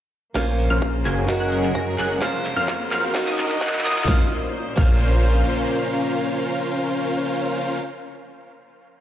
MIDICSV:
0, 0, Header, 1, 8, 480
1, 0, Start_track
1, 0, Key_signature, -5, "minor"
1, 0, Tempo, 465116
1, 366, Time_signature, 4, 2, 24, 8
1, 9293, End_track
2, 0, Start_track
2, 0, Title_t, "Synth pluck"
2, 0, Program_c, 0, 84
2, 366, Note_on_c, 0, 89, 85
2, 539, Note_off_c, 0, 89, 0
2, 726, Note_on_c, 0, 89, 99
2, 899, Note_off_c, 0, 89, 0
2, 1087, Note_on_c, 0, 92, 85
2, 1418, Note_off_c, 0, 92, 0
2, 1447, Note_on_c, 0, 90, 86
2, 1778, Note_off_c, 0, 90, 0
2, 1806, Note_on_c, 0, 94, 98
2, 2018, Note_off_c, 0, 94, 0
2, 2047, Note_on_c, 0, 90, 96
2, 2258, Note_off_c, 0, 90, 0
2, 2287, Note_on_c, 0, 89, 84
2, 2459, Note_off_c, 0, 89, 0
2, 2647, Note_on_c, 0, 89, 104
2, 2819, Note_off_c, 0, 89, 0
2, 3007, Note_on_c, 0, 89, 92
2, 3338, Note_off_c, 0, 89, 0
2, 3367, Note_on_c, 0, 87, 88
2, 3698, Note_off_c, 0, 87, 0
2, 3727, Note_on_c, 0, 90, 96
2, 3938, Note_off_c, 0, 90, 0
2, 3968, Note_on_c, 0, 87, 99
2, 4179, Note_off_c, 0, 87, 0
2, 4207, Note_on_c, 0, 89, 94
2, 4341, Note_off_c, 0, 89, 0
2, 4927, Note_on_c, 0, 89, 93
2, 8048, Note_off_c, 0, 89, 0
2, 9293, End_track
3, 0, Start_track
3, 0, Title_t, "Supersaw synth"
3, 0, Program_c, 1, 81
3, 368, Note_on_c, 1, 61, 73
3, 368, Note_on_c, 1, 65, 68
3, 368, Note_on_c, 1, 70, 68
3, 368, Note_on_c, 1, 72, 66
3, 368, Note_on_c, 1, 77, 81
3, 540, Note_off_c, 1, 61, 0
3, 540, Note_off_c, 1, 65, 0
3, 540, Note_off_c, 1, 70, 0
3, 540, Note_off_c, 1, 72, 0
3, 540, Note_off_c, 1, 77, 0
3, 728, Note_on_c, 1, 61, 91
3, 728, Note_on_c, 1, 65, 84
3, 728, Note_on_c, 1, 70, 87
3, 728, Note_on_c, 1, 72, 81
3, 728, Note_on_c, 1, 77, 98
3, 899, Note_off_c, 1, 61, 0
3, 900, Note_off_c, 1, 65, 0
3, 900, Note_off_c, 1, 70, 0
3, 900, Note_off_c, 1, 72, 0
3, 900, Note_off_c, 1, 77, 0
3, 1088, Note_on_c, 1, 61, 80
3, 1088, Note_on_c, 1, 66, 72
3, 1088, Note_on_c, 1, 68, 70
3, 1088, Note_on_c, 1, 70, 72
3, 1088, Note_on_c, 1, 80, 86
3, 1418, Note_off_c, 1, 61, 0
3, 1418, Note_off_c, 1, 80, 0
3, 1419, Note_off_c, 1, 66, 0
3, 1419, Note_off_c, 1, 68, 0
3, 1419, Note_off_c, 1, 70, 0
3, 1446, Note_on_c, 1, 70, 75
3, 1446, Note_on_c, 1, 78, 93
3, 1447, Note_on_c, 1, 61, 87
3, 1447, Note_on_c, 1, 66, 76
3, 1447, Note_on_c, 1, 68, 77
3, 1778, Note_off_c, 1, 61, 0
3, 1778, Note_off_c, 1, 66, 0
3, 1778, Note_off_c, 1, 68, 0
3, 1778, Note_off_c, 1, 70, 0
3, 1778, Note_off_c, 1, 78, 0
3, 1807, Note_on_c, 1, 61, 90
3, 1807, Note_on_c, 1, 66, 84
3, 1807, Note_on_c, 1, 68, 85
3, 1807, Note_on_c, 1, 70, 80
3, 1807, Note_on_c, 1, 82, 101
3, 2018, Note_off_c, 1, 61, 0
3, 2018, Note_off_c, 1, 66, 0
3, 2018, Note_off_c, 1, 68, 0
3, 2018, Note_off_c, 1, 70, 0
3, 2018, Note_off_c, 1, 82, 0
3, 2047, Note_on_c, 1, 61, 84
3, 2047, Note_on_c, 1, 66, 76
3, 2047, Note_on_c, 1, 68, 79
3, 2047, Note_on_c, 1, 70, 77
3, 2047, Note_on_c, 1, 78, 93
3, 2258, Note_off_c, 1, 61, 0
3, 2258, Note_off_c, 1, 66, 0
3, 2258, Note_off_c, 1, 68, 0
3, 2258, Note_off_c, 1, 70, 0
3, 2258, Note_off_c, 1, 78, 0
3, 2286, Note_on_c, 1, 61, 77
3, 2286, Note_on_c, 1, 65, 68
3, 2286, Note_on_c, 1, 72, 68
3, 2286, Note_on_c, 1, 77, 81
3, 2459, Note_off_c, 1, 61, 0
3, 2459, Note_off_c, 1, 65, 0
3, 2459, Note_off_c, 1, 72, 0
3, 2459, Note_off_c, 1, 77, 0
3, 2647, Note_on_c, 1, 70, 87
3, 2647, Note_on_c, 1, 72, 87
3, 2647, Note_on_c, 1, 77, 104
3, 2648, Note_on_c, 1, 61, 97
3, 2648, Note_on_c, 1, 65, 86
3, 2819, Note_off_c, 1, 77, 0
3, 2820, Note_off_c, 1, 61, 0
3, 2820, Note_off_c, 1, 65, 0
3, 2820, Note_off_c, 1, 70, 0
3, 2820, Note_off_c, 1, 72, 0
3, 3007, Note_on_c, 1, 66, 82
3, 3007, Note_on_c, 1, 70, 75
3, 3007, Note_on_c, 1, 77, 85
3, 3338, Note_off_c, 1, 66, 0
3, 3338, Note_off_c, 1, 70, 0
3, 3338, Note_off_c, 1, 77, 0
3, 3368, Note_on_c, 1, 66, 85
3, 3368, Note_on_c, 1, 70, 81
3, 3368, Note_on_c, 1, 75, 95
3, 3698, Note_off_c, 1, 66, 0
3, 3699, Note_off_c, 1, 70, 0
3, 3699, Note_off_c, 1, 75, 0
3, 3728, Note_on_c, 1, 66, 88
3, 3728, Note_on_c, 1, 70, 84
3, 3728, Note_on_c, 1, 78, 101
3, 3939, Note_off_c, 1, 66, 0
3, 3939, Note_off_c, 1, 70, 0
3, 3939, Note_off_c, 1, 78, 0
3, 3968, Note_on_c, 1, 66, 91
3, 3968, Note_on_c, 1, 70, 84
3, 3968, Note_on_c, 1, 75, 100
3, 4178, Note_off_c, 1, 66, 0
3, 4178, Note_off_c, 1, 70, 0
3, 4178, Note_off_c, 1, 75, 0
3, 4208, Note_on_c, 1, 72, 78
3, 4209, Note_on_c, 1, 61, 86
3, 4209, Note_on_c, 1, 65, 79
3, 4209, Note_on_c, 1, 70, 80
3, 4209, Note_on_c, 1, 77, 96
3, 4342, Note_off_c, 1, 61, 0
3, 4342, Note_off_c, 1, 65, 0
3, 4342, Note_off_c, 1, 70, 0
3, 4342, Note_off_c, 1, 72, 0
3, 4342, Note_off_c, 1, 77, 0
3, 4929, Note_on_c, 1, 61, 85
3, 4929, Note_on_c, 1, 65, 77
3, 4929, Note_on_c, 1, 70, 80
3, 4929, Note_on_c, 1, 72, 79
3, 4929, Note_on_c, 1, 77, 93
3, 8050, Note_off_c, 1, 61, 0
3, 8050, Note_off_c, 1, 65, 0
3, 8050, Note_off_c, 1, 70, 0
3, 8050, Note_off_c, 1, 72, 0
3, 8050, Note_off_c, 1, 77, 0
3, 9293, End_track
4, 0, Start_track
4, 0, Title_t, "Steel-string acoustic guitar"
4, 0, Program_c, 2, 25
4, 354, Note_on_c, 2, 58, 74
4, 363, Note_on_c, 2, 61, 72
4, 371, Note_on_c, 2, 65, 69
4, 379, Note_on_c, 2, 72, 82
4, 1273, Note_off_c, 2, 58, 0
4, 1277, Note_off_c, 2, 61, 0
4, 1281, Note_off_c, 2, 65, 0
4, 1285, Note_off_c, 2, 72, 0
4, 1315, Note_on_c, 2, 56, 78
4, 1322, Note_on_c, 2, 61, 70
4, 1331, Note_on_c, 2, 66, 70
4, 1339, Note_on_c, 2, 70, 85
4, 2233, Note_off_c, 2, 56, 0
4, 2236, Note_off_c, 2, 61, 0
4, 2241, Note_off_c, 2, 66, 0
4, 2245, Note_off_c, 2, 70, 0
4, 2274, Note_on_c, 2, 58, 82
4, 2282, Note_on_c, 2, 61, 73
4, 2291, Note_on_c, 2, 65, 74
4, 2298, Note_on_c, 2, 72, 89
4, 3192, Note_off_c, 2, 58, 0
4, 3197, Note_off_c, 2, 61, 0
4, 3201, Note_off_c, 2, 65, 0
4, 3205, Note_off_c, 2, 72, 0
4, 3235, Note_on_c, 2, 58, 81
4, 3244, Note_on_c, 2, 63, 75
4, 3252, Note_on_c, 2, 66, 74
4, 3260, Note_on_c, 2, 75, 88
4, 4153, Note_off_c, 2, 58, 0
4, 4157, Note_off_c, 2, 63, 0
4, 4161, Note_off_c, 2, 66, 0
4, 4165, Note_off_c, 2, 75, 0
4, 4190, Note_on_c, 2, 58, 88
4, 4202, Note_on_c, 2, 61, 82
4, 4215, Note_on_c, 2, 65, 78
4, 4227, Note_on_c, 2, 72, 93
4, 4332, Note_off_c, 2, 58, 0
4, 4338, Note_off_c, 2, 61, 0
4, 4345, Note_off_c, 2, 65, 0
4, 4352, Note_off_c, 2, 72, 0
4, 4909, Note_on_c, 2, 58, 89
4, 4921, Note_on_c, 2, 61, 77
4, 4933, Note_on_c, 2, 65, 79
4, 4945, Note_on_c, 2, 72, 94
4, 8029, Note_off_c, 2, 58, 0
4, 8042, Note_off_c, 2, 61, 0
4, 8054, Note_off_c, 2, 65, 0
4, 8066, Note_off_c, 2, 72, 0
4, 9293, End_track
5, 0, Start_track
5, 0, Title_t, "String section"
5, 0, Program_c, 3, 48
5, 368, Note_on_c, 3, 58, 64
5, 368, Note_on_c, 3, 72, 79
5, 369, Note_on_c, 3, 49, 73
5, 1318, Note_off_c, 3, 49, 0
5, 1318, Note_off_c, 3, 58, 0
5, 1318, Note_off_c, 3, 72, 0
5, 1327, Note_on_c, 3, 61, 73
5, 1328, Note_on_c, 3, 54, 75
5, 1328, Note_on_c, 3, 68, 72
5, 1328, Note_on_c, 3, 70, 87
5, 2278, Note_off_c, 3, 54, 0
5, 2278, Note_off_c, 3, 61, 0
5, 2278, Note_off_c, 3, 68, 0
5, 2278, Note_off_c, 3, 70, 0
5, 2288, Note_on_c, 3, 49, 77
5, 2289, Note_on_c, 3, 58, 73
5, 2289, Note_on_c, 3, 72, 83
5, 3238, Note_off_c, 3, 49, 0
5, 3238, Note_off_c, 3, 58, 0
5, 3238, Note_off_c, 3, 72, 0
5, 3246, Note_on_c, 3, 70, 89
5, 3247, Note_on_c, 3, 51, 80
5, 3247, Note_on_c, 3, 63, 71
5, 3248, Note_on_c, 3, 66, 72
5, 4197, Note_off_c, 3, 51, 0
5, 4197, Note_off_c, 3, 63, 0
5, 4197, Note_off_c, 3, 70, 0
5, 4198, Note_off_c, 3, 66, 0
5, 4204, Note_on_c, 3, 46, 86
5, 4204, Note_on_c, 3, 58, 79
5, 4204, Note_on_c, 3, 61, 78
5, 4204, Note_on_c, 3, 72, 92
5, 7324, Note_off_c, 3, 58, 0
5, 7324, Note_off_c, 3, 72, 0
5, 7325, Note_off_c, 3, 46, 0
5, 7325, Note_off_c, 3, 61, 0
5, 9293, End_track
6, 0, Start_track
6, 0, Title_t, "Detuned saw bass"
6, 0, Program_c, 4, 39
6, 367, Note_on_c, 4, 34, 93
6, 703, Note_off_c, 4, 34, 0
6, 727, Note_on_c, 4, 34, 98
6, 1063, Note_off_c, 4, 34, 0
6, 1085, Note_on_c, 4, 30, 91
6, 1422, Note_off_c, 4, 30, 0
6, 1447, Note_on_c, 4, 30, 93
6, 1783, Note_off_c, 4, 30, 0
6, 1807, Note_on_c, 4, 42, 98
6, 2023, Note_off_c, 4, 42, 0
6, 2046, Note_on_c, 4, 30, 96
6, 2263, Note_off_c, 4, 30, 0
6, 2287, Note_on_c, 4, 29, 95
6, 2623, Note_off_c, 4, 29, 0
6, 2646, Note_on_c, 4, 41, 100
6, 2982, Note_off_c, 4, 41, 0
6, 3007, Note_on_c, 4, 41, 95
6, 3343, Note_off_c, 4, 41, 0
6, 3367, Note_on_c, 4, 27, 100
6, 3703, Note_off_c, 4, 27, 0
6, 3727, Note_on_c, 4, 39, 94
6, 3943, Note_off_c, 4, 39, 0
6, 3967, Note_on_c, 4, 39, 98
6, 4183, Note_off_c, 4, 39, 0
6, 4207, Note_on_c, 4, 34, 97
6, 4341, Note_off_c, 4, 34, 0
6, 4927, Note_on_c, 4, 34, 96
6, 5606, Note_off_c, 4, 34, 0
6, 9293, End_track
7, 0, Start_track
7, 0, Title_t, "Riser"
7, 0, Program_c, 5, 103
7, 366, Note_on_c, 5, 60, 77
7, 4206, Note_off_c, 5, 60, 0
7, 9293, End_track
8, 0, Start_track
8, 0, Title_t, "Drums"
8, 366, Note_on_c, 9, 36, 111
8, 366, Note_on_c, 9, 39, 47
8, 366, Note_on_c, 9, 42, 84
8, 469, Note_off_c, 9, 39, 0
8, 469, Note_off_c, 9, 42, 0
8, 470, Note_off_c, 9, 36, 0
8, 487, Note_on_c, 9, 42, 39
8, 590, Note_off_c, 9, 42, 0
8, 607, Note_on_c, 9, 46, 104
8, 710, Note_off_c, 9, 46, 0
8, 727, Note_on_c, 9, 42, 39
8, 830, Note_off_c, 9, 42, 0
8, 846, Note_on_c, 9, 36, 111
8, 846, Note_on_c, 9, 42, 97
8, 950, Note_off_c, 9, 36, 0
8, 950, Note_off_c, 9, 42, 0
8, 967, Note_on_c, 9, 42, 38
8, 1070, Note_off_c, 9, 42, 0
8, 1087, Note_on_c, 9, 39, 51
8, 1087, Note_on_c, 9, 46, 90
8, 1190, Note_off_c, 9, 39, 0
8, 1190, Note_off_c, 9, 46, 0
8, 1207, Note_on_c, 9, 42, 39
8, 1311, Note_off_c, 9, 42, 0
8, 1327, Note_on_c, 9, 36, 111
8, 1327, Note_on_c, 9, 39, 54
8, 1327, Note_on_c, 9, 42, 89
8, 1430, Note_off_c, 9, 36, 0
8, 1430, Note_off_c, 9, 39, 0
8, 1430, Note_off_c, 9, 42, 0
8, 1447, Note_on_c, 9, 42, 39
8, 1550, Note_off_c, 9, 42, 0
8, 1567, Note_on_c, 9, 46, 100
8, 1670, Note_off_c, 9, 46, 0
8, 1687, Note_on_c, 9, 39, 54
8, 1687, Note_on_c, 9, 42, 38
8, 1790, Note_off_c, 9, 39, 0
8, 1790, Note_off_c, 9, 42, 0
8, 1807, Note_on_c, 9, 36, 116
8, 1807, Note_on_c, 9, 42, 91
8, 1910, Note_off_c, 9, 36, 0
8, 1910, Note_off_c, 9, 42, 0
8, 1927, Note_on_c, 9, 42, 43
8, 2030, Note_off_c, 9, 42, 0
8, 2046, Note_on_c, 9, 39, 65
8, 2046, Note_on_c, 9, 46, 87
8, 2149, Note_off_c, 9, 39, 0
8, 2149, Note_off_c, 9, 46, 0
8, 2167, Note_on_c, 9, 42, 41
8, 2270, Note_off_c, 9, 42, 0
8, 2286, Note_on_c, 9, 36, 121
8, 2286, Note_on_c, 9, 39, 71
8, 2286, Note_on_c, 9, 42, 91
8, 2389, Note_off_c, 9, 39, 0
8, 2389, Note_off_c, 9, 42, 0
8, 2390, Note_off_c, 9, 36, 0
8, 2406, Note_on_c, 9, 42, 41
8, 2509, Note_off_c, 9, 42, 0
8, 2526, Note_on_c, 9, 39, 80
8, 2526, Note_on_c, 9, 46, 106
8, 2629, Note_off_c, 9, 39, 0
8, 2629, Note_off_c, 9, 46, 0
8, 2647, Note_on_c, 9, 42, 39
8, 2750, Note_off_c, 9, 42, 0
8, 2767, Note_on_c, 9, 36, 125
8, 2767, Note_on_c, 9, 39, 82
8, 2767, Note_on_c, 9, 42, 97
8, 2870, Note_off_c, 9, 36, 0
8, 2870, Note_off_c, 9, 39, 0
8, 2870, Note_off_c, 9, 42, 0
8, 2887, Note_on_c, 9, 42, 39
8, 2991, Note_off_c, 9, 42, 0
8, 3007, Note_on_c, 9, 39, 87
8, 3007, Note_on_c, 9, 46, 96
8, 3111, Note_off_c, 9, 39, 0
8, 3111, Note_off_c, 9, 46, 0
8, 3129, Note_on_c, 9, 42, 39
8, 3232, Note_off_c, 9, 42, 0
8, 3247, Note_on_c, 9, 36, 121
8, 3248, Note_on_c, 9, 39, 92
8, 3248, Note_on_c, 9, 42, 93
8, 3350, Note_off_c, 9, 36, 0
8, 3351, Note_off_c, 9, 39, 0
8, 3351, Note_off_c, 9, 42, 0
8, 3368, Note_on_c, 9, 39, 88
8, 3368, Note_on_c, 9, 42, 41
8, 3471, Note_off_c, 9, 39, 0
8, 3471, Note_off_c, 9, 42, 0
8, 3488, Note_on_c, 9, 39, 98
8, 3488, Note_on_c, 9, 46, 109
8, 3591, Note_off_c, 9, 39, 0
8, 3591, Note_off_c, 9, 46, 0
8, 3609, Note_on_c, 9, 39, 84
8, 3609, Note_on_c, 9, 42, 41
8, 3712, Note_off_c, 9, 39, 0
8, 3712, Note_off_c, 9, 42, 0
8, 3727, Note_on_c, 9, 36, 125
8, 3728, Note_on_c, 9, 39, 101
8, 3728, Note_on_c, 9, 42, 97
8, 3788, Note_off_c, 9, 39, 0
8, 3788, Note_on_c, 9, 39, 92
8, 3830, Note_off_c, 9, 36, 0
8, 3831, Note_off_c, 9, 42, 0
8, 3848, Note_off_c, 9, 39, 0
8, 3848, Note_on_c, 9, 39, 95
8, 3848, Note_on_c, 9, 42, 42
8, 3908, Note_off_c, 9, 39, 0
8, 3908, Note_on_c, 9, 39, 93
8, 3952, Note_off_c, 9, 42, 0
8, 3968, Note_off_c, 9, 39, 0
8, 3968, Note_on_c, 9, 39, 107
8, 3968, Note_on_c, 9, 46, 98
8, 4028, Note_off_c, 9, 39, 0
8, 4028, Note_on_c, 9, 39, 93
8, 4071, Note_off_c, 9, 46, 0
8, 4088, Note_off_c, 9, 39, 0
8, 4088, Note_on_c, 9, 39, 97
8, 4088, Note_on_c, 9, 42, 41
8, 4148, Note_off_c, 9, 39, 0
8, 4148, Note_on_c, 9, 39, 98
8, 4191, Note_off_c, 9, 42, 0
8, 4207, Note_on_c, 9, 36, 115
8, 4209, Note_on_c, 9, 38, 84
8, 4251, Note_off_c, 9, 39, 0
8, 4310, Note_off_c, 9, 36, 0
8, 4312, Note_off_c, 9, 38, 0
8, 4927, Note_on_c, 9, 36, 120
8, 4928, Note_on_c, 9, 49, 90
8, 5030, Note_off_c, 9, 36, 0
8, 5031, Note_off_c, 9, 49, 0
8, 9293, End_track
0, 0, End_of_file